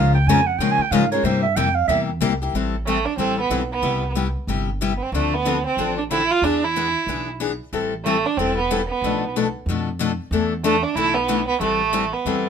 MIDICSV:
0, 0, Header, 1, 6, 480
1, 0, Start_track
1, 0, Key_signature, 0, "minor"
1, 0, Tempo, 323799
1, 1843, Time_signature, 4, 2, 24, 8
1, 18515, End_track
2, 0, Start_track
2, 0, Title_t, "Clarinet"
2, 0, Program_c, 0, 71
2, 0, Note_on_c, 0, 77, 86
2, 208, Note_off_c, 0, 77, 0
2, 217, Note_on_c, 0, 79, 95
2, 410, Note_on_c, 0, 80, 108
2, 432, Note_off_c, 0, 79, 0
2, 689, Note_on_c, 0, 78, 88
2, 712, Note_off_c, 0, 80, 0
2, 865, Note_on_c, 0, 79, 80
2, 887, Note_off_c, 0, 78, 0
2, 1051, Note_on_c, 0, 80, 107
2, 1073, Note_off_c, 0, 79, 0
2, 1212, Note_on_c, 0, 79, 81
2, 1234, Note_off_c, 0, 80, 0
2, 1358, Note_on_c, 0, 77, 76
2, 1380, Note_off_c, 0, 79, 0
2, 1647, Note_off_c, 0, 77, 0
2, 1656, Note_on_c, 0, 73, 80
2, 1843, Note_on_c, 0, 72, 79
2, 1866, Note_off_c, 0, 73, 0
2, 2108, Note_off_c, 0, 72, 0
2, 2117, Note_on_c, 0, 76, 97
2, 2316, Note_on_c, 0, 79, 103
2, 2338, Note_off_c, 0, 76, 0
2, 2594, Note_on_c, 0, 77, 89
2, 2616, Note_off_c, 0, 79, 0
2, 2774, Note_off_c, 0, 77, 0
2, 2783, Note_on_c, 0, 76, 92
2, 2963, Note_off_c, 0, 76, 0
2, 18515, End_track
3, 0, Start_track
3, 0, Title_t, "Steel-string acoustic guitar"
3, 0, Program_c, 1, 25
3, 0, Note_on_c, 1, 49, 69
3, 0, Note_on_c, 1, 53, 62
3, 0, Note_on_c, 1, 56, 73
3, 0, Note_on_c, 1, 61, 64
3, 0, Note_on_c, 1, 65, 73
3, 0, Note_on_c, 1, 70, 64
3, 233, Note_off_c, 1, 49, 0
3, 235, Note_off_c, 1, 53, 0
3, 238, Note_off_c, 1, 56, 0
3, 239, Note_off_c, 1, 61, 0
3, 244, Note_off_c, 1, 65, 0
3, 244, Note_off_c, 1, 70, 0
3, 430, Note_on_c, 1, 49, 82
3, 434, Note_on_c, 1, 61, 92
3, 435, Note_on_c, 1, 53, 93
3, 438, Note_on_c, 1, 56, 83
3, 441, Note_on_c, 1, 65, 106
3, 442, Note_on_c, 1, 70, 88
3, 579, Note_off_c, 1, 49, 0
3, 581, Note_off_c, 1, 61, 0
3, 582, Note_off_c, 1, 53, 0
3, 584, Note_off_c, 1, 56, 0
3, 585, Note_off_c, 1, 65, 0
3, 586, Note_off_c, 1, 70, 0
3, 895, Note_on_c, 1, 49, 75
3, 896, Note_on_c, 1, 53, 70
3, 902, Note_on_c, 1, 56, 71
3, 906, Note_on_c, 1, 61, 72
3, 906, Note_on_c, 1, 65, 78
3, 914, Note_on_c, 1, 70, 79
3, 1190, Note_off_c, 1, 49, 0
3, 1190, Note_off_c, 1, 53, 0
3, 1193, Note_off_c, 1, 56, 0
3, 1195, Note_off_c, 1, 65, 0
3, 1196, Note_off_c, 1, 61, 0
3, 1200, Note_off_c, 1, 70, 0
3, 1366, Note_on_c, 1, 49, 98
3, 1373, Note_on_c, 1, 53, 89
3, 1373, Note_on_c, 1, 56, 99
3, 1375, Note_on_c, 1, 61, 90
3, 1380, Note_on_c, 1, 70, 95
3, 1386, Note_on_c, 1, 65, 101
3, 1526, Note_off_c, 1, 49, 0
3, 1530, Note_off_c, 1, 53, 0
3, 1530, Note_off_c, 1, 56, 0
3, 1530, Note_off_c, 1, 61, 0
3, 1533, Note_off_c, 1, 70, 0
3, 1536, Note_off_c, 1, 65, 0
3, 1657, Note_on_c, 1, 70, 65
3, 1665, Note_on_c, 1, 65, 55
3, 1676, Note_on_c, 1, 61, 49
3, 1686, Note_on_c, 1, 56, 52
3, 1836, Note_off_c, 1, 70, 0
3, 1840, Note_off_c, 1, 65, 0
3, 1841, Note_off_c, 1, 56, 0
3, 1845, Note_off_c, 1, 61, 0
3, 1847, Note_on_c, 1, 55, 66
3, 1851, Note_on_c, 1, 48, 68
3, 1851, Note_on_c, 1, 58, 69
3, 1852, Note_on_c, 1, 64, 72
3, 1865, Note_on_c, 1, 67, 68
3, 2144, Note_off_c, 1, 55, 0
3, 2146, Note_off_c, 1, 48, 0
3, 2146, Note_off_c, 1, 58, 0
3, 2147, Note_off_c, 1, 64, 0
3, 2153, Note_off_c, 1, 67, 0
3, 2319, Note_on_c, 1, 48, 81
3, 2327, Note_on_c, 1, 58, 97
3, 2333, Note_on_c, 1, 55, 83
3, 2333, Note_on_c, 1, 64, 85
3, 2336, Note_on_c, 1, 67, 91
3, 2481, Note_off_c, 1, 48, 0
3, 2485, Note_off_c, 1, 58, 0
3, 2488, Note_off_c, 1, 55, 0
3, 2488, Note_off_c, 1, 64, 0
3, 2490, Note_off_c, 1, 67, 0
3, 2801, Note_on_c, 1, 48, 72
3, 2804, Note_on_c, 1, 55, 75
3, 2805, Note_on_c, 1, 58, 68
3, 2810, Note_on_c, 1, 64, 77
3, 2817, Note_on_c, 1, 67, 73
3, 3100, Note_off_c, 1, 48, 0
3, 3102, Note_off_c, 1, 55, 0
3, 3102, Note_off_c, 1, 58, 0
3, 3105, Note_off_c, 1, 64, 0
3, 3108, Note_off_c, 1, 67, 0
3, 3270, Note_on_c, 1, 48, 83
3, 3283, Note_on_c, 1, 55, 95
3, 3283, Note_on_c, 1, 58, 97
3, 3285, Note_on_c, 1, 64, 100
3, 3291, Note_on_c, 1, 67, 100
3, 3435, Note_off_c, 1, 48, 0
3, 3442, Note_off_c, 1, 55, 0
3, 3442, Note_off_c, 1, 58, 0
3, 3443, Note_off_c, 1, 64, 0
3, 3446, Note_off_c, 1, 67, 0
3, 3583, Note_on_c, 1, 67, 50
3, 3595, Note_on_c, 1, 64, 57
3, 3599, Note_on_c, 1, 58, 51
3, 3757, Note_off_c, 1, 67, 0
3, 3763, Note_off_c, 1, 64, 0
3, 3765, Note_off_c, 1, 58, 0
3, 3777, Note_on_c, 1, 55, 63
3, 3781, Note_on_c, 1, 60, 63
3, 3782, Note_on_c, 1, 52, 64
3, 3788, Note_on_c, 1, 64, 62
3, 3797, Note_on_c, 1, 69, 69
3, 4068, Note_off_c, 1, 55, 0
3, 4069, Note_off_c, 1, 60, 0
3, 4070, Note_off_c, 1, 52, 0
3, 4073, Note_off_c, 1, 64, 0
3, 4077, Note_off_c, 1, 69, 0
3, 4258, Note_on_c, 1, 55, 79
3, 4259, Note_on_c, 1, 52, 71
3, 4261, Note_on_c, 1, 64, 68
3, 4263, Note_on_c, 1, 60, 77
3, 4271, Note_on_c, 1, 69, 93
3, 4409, Note_off_c, 1, 52, 0
3, 4409, Note_off_c, 1, 55, 0
3, 4411, Note_off_c, 1, 60, 0
3, 4411, Note_off_c, 1, 64, 0
3, 4415, Note_off_c, 1, 69, 0
3, 4716, Note_on_c, 1, 52, 61
3, 4726, Note_on_c, 1, 60, 59
3, 4727, Note_on_c, 1, 55, 66
3, 4737, Note_on_c, 1, 64, 71
3, 4743, Note_on_c, 1, 69, 61
3, 5017, Note_off_c, 1, 52, 0
3, 5021, Note_off_c, 1, 60, 0
3, 5022, Note_off_c, 1, 55, 0
3, 5027, Note_off_c, 1, 64, 0
3, 5030, Note_off_c, 1, 69, 0
3, 5196, Note_on_c, 1, 52, 78
3, 5199, Note_on_c, 1, 55, 83
3, 5201, Note_on_c, 1, 69, 88
3, 5205, Note_on_c, 1, 60, 78
3, 5205, Note_on_c, 1, 64, 84
3, 5357, Note_off_c, 1, 52, 0
3, 5359, Note_off_c, 1, 55, 0
3, 5360, Note_off_c, 1, 69, 0
3, 5362, Note_off_c, 1, 60, 0
3, 5362, Note_off_c, 1, 64, 0
3, 5668, Note_on_c, 1, 48, 57
3, 5672, Note_on_c, 1, 64, 66
3, 5673, Note_on_c, 1, 59, 51
3, 5675, Note_on_c, 1, 55, 61
3, 5680, Note_on_c, 1, 67, 71
3, 5972, Note_off_c, 1, 48, 0
3, 5974, Note_off_c, 1, 64, 0
3, 5975, Note_off_c, 1, 59, 0
3, 5976, Note_off_c, 1, 55, 0
3, 5978, Note_off_c, 1, 67, 0
3, 6157, Note_on_c, 1, 48, 80
3, 6164, Note_on_c, 1, 55, 77
3, 6174, Note_on_c, 1, 59, 91
3, 6175, Note_on_c, 1, 64, 80
3, 6175, Note_on_c, 1, 67, 89
3, 6318, Note_off_c, 1, 48, 0
3, 6322, Note_off_c, 1, 55, 0
3, 6326, Note_off_c, 1, 59, 0
3, 6327, Note_off_c, 1, 64, 0
3, 6327, Note_off_c, 1, 67, 0
3, 6646, Note_on_c, 1, 48, 64
3, 6652, Note_on_c, 1, 59, 56
3, 6656, Note_on_c, 1, 55, 69
3, 6657, Note_on_c, 1, 64, 66
3, 6665, Note_on_c, 1, 67, 79
3, 6941, Note_off_c, 1, 48, 0
3, 6944, Note_off_c, 1, 59, 0
3, 6946, Note_off_c, 1, 55, 0
3, 6947, Note_off_c, 1, 64, 0
3, 6951, Note_off_c, 1, 67, 0
3, 7130, Note_on_c, 1, 48, 76
3, 7138, Note_on_c, 1, 55, 89
3, 7142, Note_on_c, 1, 59, 81
3, 7145, Note_on_c, 1, 64, 96
3, 7146, Note_on_c, 1, 67, 83
3, 7284, Note_off_c, 1, 48, 0
3, 7288, Note_off_c, 1, 55, 0
3, 7290, Note_off_c, 1, 59, 0
3, 7292, Note_off_c, 1, 64, 0
3, 7292, Note_off_c, 1, 67, 0
3, 7626, Note_on_c, 1, 50, 62
3, 7628, Note_on_c, 1, 53, 64
3, 7629, Note_on_c, 1, 60, 60
3, 7635, Note_on_c, 1, 62, 73
3, 7635, Note_on_c, 1, 69, 69
3, 7911, Note_off_c, 1, 50, 0
3, 7912, Note_off_c, 1, 53, 0
3, 7913, Note_off_c, 1, 60, 0
3, 7916, Note_off_c, 1, 62, 0
3, 7916, Note_off_c, 1, 69, 0
3, 8084, Note_on_c, 1, 50, 85
3, 8090, Note_on_c, 1, 53, 76
3, 8094, Note_on_c, 1, 62, 82
3, 8097, Note_on_c, 1, 60, 93
3, 8103, Note_on_c, 1, 69, 78
3, 8241, Note_off_c, 1, 50, 0
3, 8244, Note_off_c, 1, 53, 0
3, 8247, Note_off_c, 1, 62, 0
3, 8248, Note_off_c, 1, 60, 0
3, 8251, Note_off_c, 1, 69, 0
3, 8569, Note_on_c, 1, 50, 66
3, 8579, Note_on_c, 1, 53, 72
3, 8579, Note_on_c, 1, 60, 66
3, 8580, Note_on_c, 1, 62, 68
3, 8587, Note_on_c, 1, 69, 71
3, 8863, Note_off_c, 1, 50, 0
3, 8868, Note_off_c, 1, 53, 0
3, 8868, Note_off_c, 1, 60, 0
3, 8868, Note_off_c, 1, 62, 0
3, 8872, Note_off_c, 1, 69, 0
3, 9052, Note_on_c, 1, 50, 78
3, 9057, Note_on_c, 1, 60, 89
3, 9058, Note_on_c, 1, 53, 75
3, 9065, Note_on_c, 1, 62, 91
3, 9068, Note_on_c, 1, 69, 92
3, 9206, Note_off_c, 1, 50, 0
3, 9208, Note_off_c, 1, 60, 0
3, 9209, Note_off_c, 1, 53, 0
3, 9212, Note_off_c, 1, 62, 0
3, 9214, Note_off_c, 1, 69, 0
3, 9542, Note_on_c, 1, 52, 55
3, 9543, Note_on_c, 1, 59, 54
3, 9551, Note_on_c, 1, 62, 63
3, 9556, Note_on_c, 1, 68, 67
3, 9830, Note_off_c, 1, 52, 0
3, 9830, Note_off_c, 1, 59, 0
3, 9834, Note_off_c, 1, 62, 0
3, 9837, Note_off_c, 1, 68, 0
3, 10022, Note_on_c, 1, 52, 81
3, 10031, Note_on_c, 1, 59, 71
3, 10037, Note_on_c, 1, 62, 77
3, 10043, Note_on_c, 1, 68, 87
3, 10171, Note_off_c, 1, 52, 0
3, 10175, Note_off_c, 1, 59, 0
3, 10178, Note_off_c, 1, 62, 0
3, 10181, Note_off_c, 1, 68, 0
3, 10501, Note_on_c, 1, 52, 67
3, 10510, Note_on_c, 1, 59, 58
3, 10510, Note_on_c, 1, 62, 58
3, 10524, Note_on_c, 1, 68, 66
3, 10789, Note_off_c, 1, 52, 0
3, 10794, Note_off_c, 1, 59, 0
3, 10794, Note_off_c, 1, 62, 0
3, 10801, Note_off_c, 1, 68, 0
3, 10970, Note_on_c, 1, 52, 70
3, 10972, Note_on_c, 1, 62, 80
3, 10975, Note_on_c, 1, 59, 78
3, 10986, Note_on_c, 1, 68, 96
3, 11126, Note_off_c, 1, 52, 0
3, 11126, Note_off_c, 1, 62, 0
3, 11128, Note_off_c, 1, 59, 0
3, 11133, Note_off_c, 1, 68, 0
3, 11454, Note_on_c, 1, 52, 56
3, 11458, Note_on_c, 1, 55, 58
3, 11462, Note_on_c, 1, 60, 63
3, 11466, Note_on_c, 1, 64, 65
3, 11473, Note_on_c, 1, 69, 61
3, 11747, Note_off_c, 1, 52, 0
3, 11749, Note_off_c, 1, 55, 0
3, 11751, Note_off_c, 1, 60, 0
3, 11753, Note_off_c, 1, 64, 0
3, 11756, Note_off_c, 1, 69, 0
3, 11944, Note_on_c, 1, 52, 70
3, 11945, Note_on_c, 1, 55, 71
3, 11953, Note_on_c, 1, 64, 80
3, 11956, Note_on_c, 1, 60, 79
3, 11959, Note_on_c, 1, 69, 71
3, 12093, Note_off_c, 1, 52, 0
3, 12093, Note_off_c, 1, 55, 0
3, 12097, Note_off_c, 1, 64, 0
3, 12099, Note_off_c, 1, 60, 0
3, 12100, Note_off_c, 1, 69, 0
3, 12437, Note_on_c, 1, 52, 60
3, 12438, Note_on_c, 1, 60, 61
3, 12439, Note_on_c, 1, 55, 58
3, 12449, Note_on_c, 1, 69, 65
3, 12450, Note_on_c, 1, 64, 72
3, 12719, Note_off_c, 1, 52, 0
3, 12719, Note_off_c, 1, 60, 0
3, 12720, Note_off_c, 1, 55, 0
3, 12724, Note_off_c, 1, 69, 0
3, 12725, Note_off_c, 1, 64, 0
3, 12907, Note_on_c, 1, 52, 91
3, 12908, Note_on_c, 1, 55, 92
3, 12912, Note_on_c, 1, 64, 91
3, 12913, Note_on_c, 1, 60, 82
3, 12919, Note_on_c, 1, 69, 89
3, 13055, Note_off_c, 1, 52, 0
3, 13056, Note_off_c, 1, 55, 0
3, 13057, Note_off_c, 1, 64, 0
3, 13058, Note_off_c, 1, 60, 0
3, 13061, Note_off_c, 1, 69, 0
3, 13399, Note_on_c, 1, 47, 56
3, 13404, Note_on_c, 1, 53, 61
3, 13406, Note_on_c, 1, 57, 70
3, 13408, Note_on_c, 1, 69, 65
3, 13411, Note_on_c, 1, 62, 60
3, 13680, Note_off_c, 1, 47, 0
3, 13683, Note_off_c, 1, 53, 0
3, 13684, Note_off_c, 1, 57, 0
3, 13685, Note_off_c, 1, 69, 0
3, 13686, Note_off_c, 1, 62, 0
3, 13875, Note_on_c, 1, 47, 74
3, 13880, Note_on_c, 1, 53, 75
3, 13880, Note_on_c, 1, 57, 80
3, 13887, Note_on_c, 1, 62, 81
3, 13888, Note_on_c, 1, 69, 84
3, 14020, Note_off_c, 1, 47, 0
3, 14022, Note_off_c, 1, 53, 0
3, 14022, Note_off_c, 1, 57, 0
3, 14026, Note_off_c, 1, 62, 0
3, 14026, Note_off_c, 1, 69, 0
3, 14358, Note_on_c, 1, 47, 67
3, 14370, Note_on_c, 1, 53, 69
3, 14374, Note_on_c, 1, 57, 72
3, 14374, Note_on_c, 1, 62, 62
3, 14375, Note_on_c, 1, 69, 68
3, 14641, Note_off_c, 1, 47, 0
3, 14646, Note_off_c, 1, 53, 0
3, 14648, Note_off_c, 1, 57, 0
3, 14648, Note_off_c, 1, 62, 0
3, 14649, Note_off_c, 1, 69, 0
3, 14814, Note_on_c, 1, 47, 83
3, 14829, Note_on_c, 1, 53, 89
3, 14831, Note_on_c, 1, 57, 80
3, 14833, Note_on_c, 1, 62, 103
3, 14839, Note_on_c, 1, 69, 100
3, 14970, Note_off_c, 1, 47, 0
3, 14977, Note_off_c, 1, 53, 0
3, 14978, Note_off_c, 1, 57, 0
3, 14979, Note_off_c, 1, 62, 0
3, 14982, Note_off_c, 1, 69, 0
3, 15303, Note_on_c, 1, 52, 58
3, 15308, Note_on_c, 1, 57, 65
3, 15314, Note_on_c, 1, 62, 65
3, 15318, Note_on_c, 1, 64, 73
3, 15321, Note_on_c, 1, 69, 58
3, 15594, Note_off_c, 1, 52, 0
3, 15596, Note_off_c, 1, 57, 0
3, 15599, Note_off_c, 1, 62, 0
3, 15601, Note_off_c, 1, 64, 0
3, 15603, Note_off_c, 1, 69, 0
3, 15774, Note_on_c, 1, 52, 85
3, 15775, Note_on_c, 1, 62, 89
3, 15776, Note_on_c, 1, 57, 84
3, 15785, Note_on_c, 1, 64, 77
3, 15793, Note_on_c, 1, 69, 103
3, 15930, Note_off_c, 1, 52, 0
3, 15931, Note_off_c, 1, 57, 0
3, 15931, Note_off_c, 1, 62, 0
3, 15936, Note_off_c, 1, 64, 0
3, 15940, Note_off_c, 1, 69, 0
3, 16255, Note_on_c, 1, 52, 59
3, 16256, Note_on_c, 1, 57, 61
3, 16262, Note_on_c, 1, 64, 79
3, 16264, Note_on_c, 1, 62, 64
3, 16274, Note_on_c, 1, 69, 69
3, 16550, Note_off_c, 1, 52, 0
3, 16551, Note_off_c, 1, 57, 0
3, 16554, Note_off_c, 1, 64, 0
3, 16555, Note_off_c, 1, 62, 0
3, 16560, Note_off_c, 1, 69, 0
3, 16726, Note_on_c, 1, 52, 85
3, 16735, Note_on_c, 1, 62, 85
3, 16736, Note_on_c, 1, 57, 94
3, 16739, Note_on_c, 1, 64, 88
3, 16744, Note_on_c, 1, 69, 85
3, 16887, Note_off_c, 1, 52, 0
3, 16892, Note_off_c, 1, 57, 0
3, 16892, Note_off_c, 1, 62, 0
3, 16894, Note_off_c, 1, 64, 0
3, 16896, Note_off_c, 1, 69, 0
3, 17206, Note_on_c, 1, 52, 56
3, 17209, Note_on_c, 1, 60, 60
3, 17210, Note_on_c, 1, 55, 56
3, 17215, Note_on_c, 1, 69, 58
3, 17217, Note_on_c, 1, 64, 62
3, 17507, Note_off_c, 1, 52, 0
3, 17508, Note_off_c, 1, 60, 0
3, 17509, Note_off_c, 1, 55, 0
3, 17511, Note_off_c, 1, 69, 0
3, 17512, Note_off_c, 1, 64, 0
3, 17679, Note_on_c, 1, 52, 69
3, 17683, Note_on_c, 1, 55, 88
3, 17690, Note_on_c, 1, 60, 91
3, 17695, Note_on_c, 1, 64, 82
3, 17702, Note_on_c, 1, 69, 87
3, 17844, Note_off_c, 1, 52, 0
3, 17846, Note_off_c, 1, 55, 0
3, 17850, Note_off_c, 1, 60, 0
3, 17853, Note_off_c, 1, 64, 0
3, 17856, Note_off_c, 1, 69, 0
3, 18170, Note_on_c, 1, 52, 68
3, 18180, Note_on_c, 1, 60, 66
3, 18180, Note_on_c, 1, 64, 66
3, 18182, Note_on_c, 1, 55, 63
3, 18191, Note_on_c, 1, 69, 58
3, 18470, Note_off_c, 1, 52, 0
3, 18474, Note_off_c, 1, 60, 0
3, 18475, Note_off_c, 1, 55, 0
3, 18475, Note_off_c, 1, 64, 0
3, 18480, Note_off_c, 1, 69, 0
3, 18515, End_track
4, 0, Start_track
4, 0, Title_t, "Violin"
4, 0, Program_c, 2, 40
4, 4238, Note_on_c, 2, 57, 82
4, 4523, Note_on_c, 2, 62, 82
4, 4545, Note_off_c, 2, 57, 0
4, 4710, Note_off_c, 2, 62, 0
4, 4719, Note_on_c, 2, 60, 90
4, 5015, Note_off_c, 2, 60, 0
4, 5045, Note_on_c, 2, 59, 76
4, 5339, Note_off_c, 2, 59, 0
4, 5512, Note_on_c, 2, 59, 84
4, 6122, Note_off_c, 2, 59, 0
4, 7365, Note_on_c, 2, 59, 52
4, 7448, Note_on_c, 2, 60, 83
4, 7471, Note_off_c, 2, 59, 0
4, 7616, Note_off_c, 2, 60, 0
4, 7637, Note_on_c, 2, 57, 77
4, 7911, Note_on_c, 2, 59, 87
4, 7933, Note_off_c, 2, 57, 0
4, 8380, Note_off_c, 2, 59, 0
4, 8394, Note_on_c, 2, 60, 80
4, 8828, Note_off_c, 2, 60, 0
4, 8859, Note_on_c, 2, 62, 82
4, 8941, Note_off_c, 2, 62, 0
4, 9064, Note_on_c, 2, 64, 93
4, 9352, Note_on_c, 2, 65, 98
4, 9374, Note_off_c, 2, 64, 0
4, 9543, Note_on_c, 2, 62, 93
4, 9565, Note_off_c, 2, 65, 0
4, 9836, Note_on_c, 2, 64, 93
4, 9858, Note_off_c, 2, 62, 0
4, 10783, Note_off_c, 2, 64, 0
4, 11928, Note_on_c, 2, 57, 88
4, 12241, Note_on_c, 2, 62, 85
4, 12263, Note_off_c, 2, 57, 0
4, 12408, Note_on_c, 2, 60, 92
4, 12430, Note_off_c, 2, 62, 0
4, 12701, Note_off_c, 2, 60, 0
4, 12710, Note_on_c, 2, 59, 80
4, 13012, Note_off_c, 2, 59, 0
4, 13158, Note_on_c, 2, 59, 80
4, 13787, Note_off_c, 2, 59, 0
4, 15774, Note_on_c, 2, 57, 87
4, 16051, Note_on_c, 2, 62, 83
4, 16073, Note_off_c, 2, 57, 0
4, 16240, Note_on_c, 2, 64, 103
4, 16263, Note_off_c, 2, 62, 0
4, 16520, Note_on_c, 2, 59, 92
4, 16542, Note_off_c, 2, 64, 0
4, 17003, Note_off_c, 2, 59, 0
4, 17012, Note_on_c, 2, 59, 92
4, 17190, Note_off_c, 2, 59, 0
4, 17214, Note_on_c, 2, 57, 92
4, 17976, Note_on_c, 2, 59, 71
4, 17999, Note_off_c, 2, 57, 0
4, 18515, Note_off_c, 2, 59, 0
4, 18515, End_track
5, 0, Start_track
5, 0, Title_t, "Upright bass"
5, 0, Program_c, 3, 32
5, 0, Note_on_c, 3, 37, 92
5, 387, Note_off_c, 3, 37, 0
5, 396, Note_on_c, 3, 41, 88
5, 858, Note_off_c, 3, 41, 0
5, 867, Note_on_c, 3, 46, 83
5, 1147, Note_off_c, 3, 46, 0
5, 1348, Note_on_c, 3, 44, 91
5, 1820, Note_off_c, 3, 44, 0
5, 1831, Note_on_c, 3, 43, 95
5, 2301, Note_off_c, 3, 43, 0
5, 2316, Note_on_c, 3, 41, 91
5, 2777, Note_off_c, 3, 41, 0
5, 2786, Note_on_c, 3, 40, 88
5, 3257, Note_off_c, 3, 40, 0
5, 3274, Note_on_c, 3, 36, 90
5, 3741, Note_off_c, 3, 36, 0
5, 3757, Note_on_c, 3, 33, 75
5, 4524, Note_off_c, 3, 33, 0
5, 4704, Note_on_c, 3, 33, 75
5, 5117, Note_off_c, 3, 33, 0
5, 5187, Note_on_c, 3, 35, 67
5, 5599, Note_off_c, 3, 35, 0
5, 5667, Note_on_c, 3, 36, 84
5, 6438, Note_off_c, 3, 36, 0
5, 6632, Note_on_c, 3, 31, 76
5, 7401, Note_off_c, 3, 31, 0
5, 7592, Note_on_c, 3, 38, 96
5, 8362, Note_off_c, 3, 38, 0
5, 8548, Note_on_c, 3, 33, 75
5, 9320, Note_off_c, 3, 33, 0
5, 9512, Note_on_c, 3, 40, 81
5, 10283, Note_off_c, 3, 40, 0
5, 10474, Note_on_c, 3, 35, 74
5, 11244, Note_off_c, 3, 35, 0
5, 11452, Note_on_c, 3, 33, 86
5, 12215, Note_off_c, 3, 33, 0
5, 12410, Note_on_c, 3, 28, 71
5, 13174, Note_off_c, 3, 28, 0
5, 13365, Note_on_c, 3, 35, 80
5, 14132, Note_off_c, 3, 35, 0
5, 14319, Note_on_c, 3, 41, 83
5, 15089, Note_off_c, 3, 41, 0
5, 15281, Note_on_c, 3, 40, 96
5, 16051, Note_off_c, 3, 40, 0
5, 16236, Note_on_c, 3, 35, 76
5, 17008, Note_off_c, 3, 35, 0
5, 17193, Note_on_c, 3, 33, 84
5, 17967, Note_off_c, 3, 33, 0
5, 18159, Note_on_c, 3, 40, 73
5, 18515, Note_off_c, 3, 40, 0
5, 18515, End_track
6, 0, Start_track
6, 0, Title_t, "Muted upright bass strokes"
6, 1164, Note_on_c, 9, 29, 44
6, 1312, Note_off_c, 9, 29, 0
6, 18515, End_track
0, 0, End_of_file